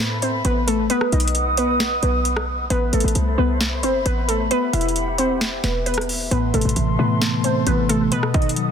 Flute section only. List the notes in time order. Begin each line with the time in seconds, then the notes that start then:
Already playing: A4 C5 E5 B5
0.90 B4 D#5 F#5 D#6
2.70 A4 C5 E5 B5
4.51 G4 F#5
6.31 A4 A5 C6
8.12 D#5 F#5 D#6